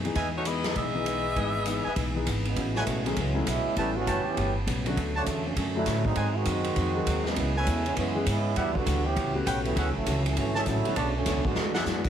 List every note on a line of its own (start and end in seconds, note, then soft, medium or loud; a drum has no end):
0.00 0.13 F#2 medium
0.05 0.15 E3 medium
0.05 0.15 B3 medium
0.05 0.15 D#4 medium
0.05 0.15 G#4 medium
0.05 ride soft
0.15 0.73 E2 medium
0.15 0.36 E3 soft
0.15 0.36 G#3 soft
0.15 0.37 B3 medium
0.15 0.37 D#4 medium
0.15 0.28 B4 medium
0.15 0.28 D#5 medium
0.15 0.28 E5 medium
0.15 0.28 G#5 medium
0.15 kick soft
0.15 ride medium
0.37 0.46 A3 medium
0.37 0.46 D#4 medium
0.37 0.47 F#4 medium
0.37 0.46 C#5 medium
0.45 0.66 E3 medium
0.45 0.66 G#3 medium
0.45 0.76 B3 medium
0.45 0.67 B3 medium
0.45 0.67 D#4 medium
0.45 0.77 E4 medium
0.45 0.77 G#4 medium
0.45 0.76 D#5 medium
0.45 hi-hat pedal medium
0.45 ride medium
0.64 snare medium
0.64 ride soft
0.76 1.33 B1 medium
0.76 0.96 E3 soft
0.76 0.97 G#3 medium
0.76 2.23 B3 medium
0.76 0.97 B3 soft
0.76 0.97 D#4 medium
0.76 2.23 G#4 medium
0.76 2.23 D#5 medium
0.76 2.23 E5 loud
0.76 kick soft
0.76 ride medium
0.93 1.04 E3 medium
0.93 1.05 B3 medium
0.93 1.04 D#4 medium
0.93 1.05 G#4 medium
1.06 1.26 E3 medium
1.06 1.27 G#3 medium
1.06 1.27 B3 medium
1.06 1.27 D#4 medium
1.06 hi-hat pedal medium
1.06 ride medium
1.36 1.82 G#1 medium
1.36 1.56 E3 medium
1.36 1.56 G#3 medium
1.36 1.57 B3 medium
1.36 1.57 D#4 medium
1.36 1.49 B4 medium
1.36 1.49 D#5 medium
1.36 1.49 E5 medium
1.36 1.49 G#5 medium
1.36 kick soft
1.36 ride medium
1.66 1.86 E3 medium
1.66 1.87 G#3 medium
1.66 1.87 B3 medium
1.66 1.87 D#4 medium
1.66 hi-hat pedal medium
1.66 ride medium
1.85 1.93 B4 medium
1.85 1.93 D#5 medium
1.85 1.93 E5 medium
1.85 1.93 G#5 medium
1.85 muted upright bass stroke soft
1.96 2.24 B1 medium
1.96 2.16 E3 medium
1.96 2.17 G#3 soft
1.96 2.17 B3 medium
1.96 2.18 D#4 medium
1.96 kick soft
1.96 ride medium
2.15 2.25 E3 medium
2.15 2.25 B3 medium
2.15 2.25 D#4 medium
2.15 2.26 G#4 medium
2.26 2.55 G#1 medium
2.26 2.46 E3 medium
2.26 2.46 G#3 medium
2.26 2.47 B3 medium
2.26 2.47 D#4 medium
2.26 hi-hat pedal medium
2.26 ride medium
2.45 2.74 C#3 medium
2.45 2.74 E3 medium
2.45 2.74 G#3 medium
2.45 2.74 B3 medium
2.45 ride soft
2.56 2.85 A1 medium
2.56 2.77 A2 soft
2.56 2.77 G#3 soft
2.56 2.77 C#4 soft
2.56 2.77 F#4 soft
2.56 kick soft
2.56 ride medium
2.75 3.04 B2 medium
2.75 3.04 C#3 medium
2.75 3.04 E3 medium
2.75 3.04 A3 medium
2.75 2.83 B4 medium
2.75 2.83 C#5 medium
2.75 2.83 F#5 medium
2.75 2.83 G#5 medium
2.75 snare soft
2.86 3.16 B1 medium
2.86 3.07 A2 medium
2.86 3.07 G#3 medium
2.86 3.07 C#4 medium
2.86 3.08 F#4 medium
2.86 kick soft
2.86 hi-hat pedal medium
2.86 ride medium
3.05 3.17 E3 medium
3.05 3.15 F#3 medium
3.05 3.17 G#3 medium
3.05 3.16 A3 medium
3.05 3.16 B3 medium
3.05 3.17 B3 medium
3.05 3.16 C#4 medium
3.05 3.17 C#4 medium
3.05 3.16 G#4 medium
3.05 ride soft
3.16 3.46 C#2 medium
3.16 3.36 A2 soft
3.16 3.45 E3 medium
3.16 3.37 G#3 soft
3.16 3.45 G#3 medium
3.16 3.45 B3 medium
3.16 3.37 C#4 soft
3.16 3.46 C#4 medium
3.16 3.38 F#4 medium
3.16 kick soft
3.16 ride medium
3.34 3.45 F#3 medium
3.34 3.45 A3 medium
3.34 3.45 B3 medium
3.34 3.45 C#4 medium
3.34 3.46 E4 medium
3.46 3.64 B1 medium
3.46 3.66 A2 medium
3.46 3.67 G#3 medium
3.46 3.77 G#3 medium
3.46 3.76 B3 medium
3.46 3.76 C#4 medium
3.46 3.67 C#4 medium
3.46 3.76 E4 loud
3.46 3.67 F#4 medium
3.46 kick soft
3.46 hi-hat pedal medium
3.46 ride medium
3.66 muted upright bass stroke soft
3.76 4.06 A1 medium
3.76 3.96 A2 soft
3.76 3.93 E3 medium
3.76 3.95 G3 medium
3.76 3.97 G3 soft
3.76 3.94 A3 medium
3.76 3.94 B3 soft
3.76 3.94 B3 medium
3.76 3.97 B3 soft
3.76 3.94 C#4 medium
3.76 3.98 C#4 medium
3.76 3.95 E4 loud
3.76 3.94 G4 medium
3.76 3.90 B4 medium
3.76 3.90 C#5 medium
3.76 3.90 G5 medium
3.76 3.90 A5 medium
3.76 kick soft
3.76 ride medium
3.96 4.24 E3 medium
3.96 4.24 B3 medium
3.96 4.25 C#4 medium
3.96 4.26 F#4 loud
4.06 4.24 F#1 medium
4.06 4.26 A2 medium
4.06 4.27 G3 medium
4.06 4.27 B3 medium
4.06 4.27 C#4 medium
4.06 4.52 B4 medium
4.06 4.52 C#5 medium
4.06 4.52 G5 medium
4.06 4.52 A5 loud
4.06 kick soft
4.06 hi-hat pedal medium
4.06 ride medium
4.25 4.56 E3 medium
4.25 4.56 B3 medium
4.25 4.56 C#4 medium
4.25 4.55 G4 loud
4.25 muted upright bass stroke soft
4.36 4.66 G1 medium
4.36 4.56 A2 soft
4.36 4.57 G3 soft
4.36 4.57 B3 soft
4.36 4.57 C#4 medium
4.36 kick soft
4.36 ride medium
4.67 4.96 B1 medium
4.67 4.87 A2 medium
4.67 4.87 G3 medium
4.67 4.87 B3 medium
4.67 4.87 C#4 medium
4.67 kick soft
4.67 hi-hat pedal medium
4.67 ride medium
4.84 5.13 D3 medium
4.84 4.96 D3 medium
4.84 5.13 F#3 medium
4.84 4.96 F#3 medium
4.84 5.13 A3 medium
4.84 4.96 A3 medium
4.84 5.13 B3 medium
4.84 4.96 C#4 medium
4.84 4.96 F#4 medium
4.84 ride soft
4.96 5.26 D2 medium
4.96 5.16 D3 soft
4.96 5.17 F#3 soft
4.96 5.17 A3 medium
4.96 5.17 C#4 medium
4.96 kick soft
4.96 ride medium
5.16 5.46 C#3 medium
5.16 5.45 D3 medium
5.16 5.45 F#3 medium
5.16 5.45 A3 medium
5.16 5.23 C#5 medium
5.16 5.23 D5 medium
5.16 5.23 F#5 medium
5.16 5.23 A5 loud
5.26 5.55 E2 medium
5.26 5.46 D3 medium
5.26 5.47 F#3 medium
5.26 5.47 A3 medium
5.26 5.47 C#4 medium
5.26 kick soft
5.26 hi-hat pedal medium
5.26 ride medium
5.46 5.56 D3 medium
5.46 5.56 F#3 medium
5.46 5.56 A3 medium
5.46 5.56 C#4 medium
5.56 5.85 F#2 medium
5.56 5.76 D3 medium
5.56 5.74 D3 medium
5.56 5.74 F#3 medium
5.56 5.77 F#3 soft
5.56 5.77 A3 medium
5.56 5.75 A3 medium
5.56 5.74 C#4 medium
5.56 5.77 C#4 soft
5.56 kick soft
5.56 ride medium
5.75 6.14 D3 medium
5.75 6.14 F#3 medium
5.75 6.14 A3 medium
5.75 6.04 A3 medium
5.75 6.15 C#4 medium
5.75 6.04 C#4 medium
5.75 6.04 D4 medium
5.75 6.04 E4 medium
5.75 6.15 F#4 medium
5.86 6.15 A2 loud
5.86 6.06 D3 medium
5.86 6.06 F#3 medium
5.86 6.07 A3 medium
5.86 6.07 C#4 medium
5.86 kick soft
5.86 snare soft
5.86 hi-hat pedal medium
5.86 ride medium
6.05 6.34 F#3 medium
6.05 6.34 G#3 medium
6.05 6.34 C4 medium
6.05 6.34 D#4 medium
6.05 kick medium
6.15 6.45 G#2 medium
6.15 6.36 G#2 soft
6.15 6.37 F#3 soft
6.15 6.37 C4 medium
6.15 6.37 D#4 medium
6.15 6.29 C5 medium
6.15 6.29 D#5 medium
6.15 6.29 F#5 medium
6.15 6.29 G#5 medium
6.15 kick soft
6.15 ride medium
6.36 7.26 D#3 medium
6.36 7.26 G#3 medium
6.36 7.26 C4 medium
6.36 7.26 F#4 loud
6.45 6.75 F#2 medium
6.45 6.66 G#2 medium
6.45 6.66 F#3 medium
6.45 6.67 C4 medium
6.45 6.67 D#4 medium
6.45 kick soft
6.45 hi-hat pedal medium
6.45 ride medium
6.64 ride medium
6.76 7.05 F2 medium
6.76 6.96 G#2 soft
6.76 6.96 F#3 medium
6.76 6.97 C4 medium
6.76 6.97 D#4 medium
6.76 kick soft
6.76 ride medium
6.95 7.34 D#3 medium
6.95 7.34 F#3 medium
6.95 7.34 G#3 medium
6.95 7.35 C4 medium
6.95 7.35 F#4 medium
7.06 7.35 D#2 medium
7.06 7.26 G#2 medium
7.06 7.27 F#3 medium
7.06 7.27 C4 medium
7.06 7.27 D#4 medium
7.06 kick soft
7.06 hi-hat pedal medium
7.06 ride medium
7.26 7.56 C#3 medium
7.26 7.56 E3 medium
7.26 7.56 G#3 medium
7.26 7.56 B3 medium
7.26 snare soft
7.36 7.65 C#2 medium
7.36 7.56 C#3 soft
7.36 7.57 G#3 soft
7.36 7.57 B3 medium
7.36 7.57 E4 medium
7.36 kick soft
7.36 ride medium
7.56 7.86 B2 medium
7.56 7.86 C#3 medium
7.56 7.86 E3 medium
7.56 7.86 A3 medium
7.56 7.94 B4 medium
7.56 7.94 C#5 medium
7.56 7.94 E5 medium
7.56 7.94 G#5 loud
7.66 7.95 E2 medium
7.66 7.87 C#3 medium
7.66 7.87 G#3 medium
7.66 7.87 B3 medium
7.66 7.87 E4 medium
7.66 kick soft
7.66 hi-hat pedal medium
7.66 ride medium
7.86 7.97 E3 medium
7.86 7.97 G#3 medium
7.86 7.96 B3 medium
7.86 7.97 C#4 medium
7.86 ride soft
7.95 8.26 F#2 medium
7.95 8.16 C#3 soft
7.95 8.25 E3 medium
7.95 8.16 G#3 soft
7.95 8.25 G#3 medium
7.95 8.17 B3 soft
7.95 8.25 B3 medium
7.95 8.25 C#4 medium
7.95 8.17 E4 medium
7.95 kick soft
7.95 ride medium
8.15 8.25 E3 medium
8.15 8.25 G#3 medium
8.15 8.25 B3 medium
8.15 8.26 C#4 medium
8.15 8.26 G#4 medium
8.26 8.55 G#2 loud
8.26 8.46 C#3 medium
8.26 8.46 G#3 medium
8.26 8.57 G#3 medium
8.26 8.47 B3 medium
8.26 8.56 B3 medium
8.26 8.57 C#4 medium
8.26 8.47 E4 medium
8.26 8.57 E4 loud
8.26 kick soft
8.26 hi-hat pedal medium
8.26 ride medium
8.56 8.66 E2 medium
8.56 8.76 E3 medium
8.56 8.77 G3 soft
8.56 8.74 G3 medium
8.56 8.74 B3 medium
8.56 8.74 D4 medium
8.56 8.77 D4 medium
8.56 8.75 E4 loud
8.56 8.77 F#4 soft
8.56 8.70 G4 medium
8.56 8.69 D5 medium
8.56 8.69 E5 medium
8.56 8.70 F#5 medium
8.56 kick soft
8.56 ride medium
8.66 8.75 D2 medium
8.75 8.85 B1 medium
8.75 9.05 D3 medium
8.75 9.06 G3 medium
8.75 9.04 B3 medium
8.75 9.05 F#4 loud
8.75 kick medium
8.86 9.15 D2 loud
8.86 9.06 E3 medium
8.86 9.06 G3 medium
8.86 9.07 D4 medium
8.86 9.07 F#4 medium
8.86 kick soft
8.86 hi-hat pedal medium
8.86 ride medium
9.05 9.35 E3 medium
9.05 9.35 B3 medium
9.05 9.35 C#4 medium
9.05 9.35 G4 loud
9.16 9.45 C#2 medium
9.16 9.36 A2 soft
9.16 9.37 G3 medium
9.16 9.37 C#4 soft
9.16 9.37 F#4 medium
9.16 kick soft
9.16 ride medium
9.35 9.74 A3 medium
9.35 9.74 B3 medium
9.35 9.74 C#4 medium
9.35 9.74 F#4 medium
9.35 9.74 G4 medium
9.46 9.75 B1 loud
9.46 9.66 A2 medium
9.46 9.66 G3 medium
9.46 9.66 C#4 medium
9.46 9.67 F#4 medium
9.46 9.59 B4 loud
9.46 9.59 C#5 medium
9.46 9.59 F#5 medium
9.46 9.59 G5 loud
9.46 kick soft
9.46 hi-hat pedal medium
9.46 ride medium
9.64 9.93 E3 medium
9.64 9.92 F#3 medium
9.64 9.93 A3 medium
9.64 9.93 B3 medium
9.64 ride soft
9.75 9.85 D2 medium
9.75 9.96 D3 soft
9.75 9.96 G#3 soft
9.75 9.96 C#4 soft
9.75 9.97 F#4 medium
9.75 9.89 G#4 medium
9.75 9.89 C#5 medium
9.75 9.89 E5 medium
9.75 9.89 F#5 medium
9.75 kick soft
9.75 ride medium
9.85 9.95 C#2 medium
9.95 10.05 A1 medium
9.95 10.25 C#3 medium
9.95 10.24 E3 medium
9.95 10.25 F#3 medium
9.95 10.24 A3 medium
10.06 10.35 C#2 medium
10.06 10.26 D3 medium
10.06 10.26 G#3 medium
10.06 10.27 C#4 medium
10.06 10.27 F#4 medium
10.06 kick soft
10.06 hi-hat pedal medium
10.06 ride medium
10.25 10.36 E3 medium
10.25 10.36 F#3 medium
10.25 10.36 A3 medium
10.25 10.36 C#4 medium
10.25 ride medium
10.36 10.65 G#1 medium
10.36 10.56 D3 soft
10.36 10.65 E3 medium
10.36 10.65 F#3 medium
10.36 10.57 G#3 soft
10.36 10.65 A3 medium
10.36 10.65 C#4 medium
10.36 10.57 C#4 medium
10.36 10.57 F#4 soft
10.36 kick soft
10.36 ride medium
10.55 10.63 G#4 medium
10.55 10.63 C#5 medium
10.55 10.63 E5 medium
10.55 10.63 A5 loud
10.55 snare soft
10.66 10.83 A1 medium
10.66 10.86 D3 medium
10.66 10.96 F#3 medium
10.66 10.86 G#3 medium
10.66 10.96 A3 medium
10.66 10.87 C#4 medium
10.66 10.97 C#4 medium
10.66 10.97 E4 loud
10.66 10.87 F#4 medium
10.66 kick soft
10.66 hi-hat pedal medium
10.66 ride medium
10.85 10.95 D3 medium
10.85 10.95 A3 medium
10.85 10.95 B3 medium
10.85 10.96 C#4 medium
10.85 10.96 F#4 medium
10.85 muted upright bass stroke soft
10.85 ride medium
10.96 11.25 B1 medium
10.96 11.15 C#3 medium
10.96 11.14 F#3 medium
10.96 11.15 A3 medium
10.96 11.16 B3 soft
10.96 11.15 D4 loud
10.96 11.16 D4 medium
10.96 11.17 A4 medium
10.96 11.09 B4 medium
10.96 11.09 C#5 medium
10.96 11.17 C#5 medium
10.96 11.09 D5 medium
10.96 11.09 A5 medium
10.96 kick soft
10.96 ride medium
11.16 11.44 D3 medium
11.16 11.43 F#3 medium
11.16 11.43 A3 medium
11.16 11.43 C#4 medium
11.26 11.35 D2 loud
11.26 11.46 B3 medium
11.26 11.47 D4 medium
11.26 11.47 A4 medium
11.26 11.47 C#5 medium
11.26 kick soft
11.26 snare soft
11.26 hi-hat pedal medium
11.26 ride medium
11.35 11.44 B1 medium
11.45 11.55 A1 medium
11.45 11.75 D3 medium
11.45 11.76 G#3 medium
11.45 11.76 B3 medium
11.45 11.75 F#4 loud
11.45 kick medium
11.55 11.85 E2 medium
11.55 11.76 E3 soft
11.55 11.77 G#3 soft
11.55 11.77 D4 soft
11.55 11.78 F#4 medium
11.55 snare medium
11.74 12.09 E3 medium
11.74 12.09 G#3 medium
11.74 12.09 B3 medium
11.74 12.09 D4 medium
11.74 12.09 F#4 medium
11.74 11.82 G#4 medium
11.74 11.83 D5 medium
11.74 11.82 E5 loud
11.74 11.82 F#5 loud
11.74 snare medium
11.86 12.09 F#2 medium
11.86 12.06 E3 medium
11.86 12.06 G#3 medium
11.86 12.06 D4 medium
11.86 12.07 F#4 medium
11.86 snare medium
11.86 hi-hat pedal medium
12.05 kick medium
12.05 crash medium